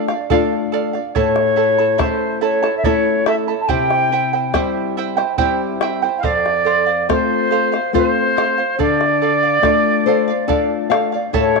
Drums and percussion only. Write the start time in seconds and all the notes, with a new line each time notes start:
0.08 bombo rim
0.30 bombo low
0.53 bombo rim
0.95 bombo rim
1.16 bombo low
1.36 bombo rim
1.99 bombo rim, bombo low
2.64 bombo rim
2.84 bombo low
3.26 bombo rim
3.69 bombo low
3.91 bombo rim
4.54 bombo rim, bombo low
5.18 bombo rim
5.38 bombo low
5.81 bombo rim
6.24 bombo low
6.46 bombo rim
7.10 bombo rim, bombo low
7.74 bombo rim
7.95 bombo low
8.38 bombo rim
8.80 bombo rim, bombo low
9.01 bombo rim
9.22 bombo rim
9.63 bombo rim, bombo low
10.49 bombo low
10.92 bombo rim
11.13 bombo rim
11.34 bombo low
11.56 bombo rim